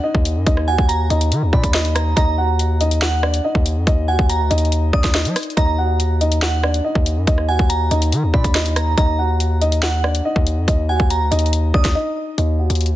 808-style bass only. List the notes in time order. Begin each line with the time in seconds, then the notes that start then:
0.15 D#2
0.36 F#2
0.47 D#2
0.78 D#2
1.10 D#2
1.32 D#3
1.42 D#2
1.53 A#2
1.64 D#2
2.17 D#2
3.55 D#2
3.76 F2
3.87 D#2
4.19 D#2
4.40 D2
4.51 D#2
4.93 D#2
5.04 D#2
5.25 F#3
5.57 D#2
6.95 D#2
7.17 F#2
7.27 D#2
7.59 D#2
7.91 D#2
8.12 D#3
8.23 D#2
8.34 A#2
8.44 D#2
8.98 D#2
10.36 D#2
10.57 F2
10.68 D#2
11.00 D#2
11.21 D2
11.32 D#2
11.74 D#2
11.85 D#2
12.38 D#2
12.70 D#2
12.91 D2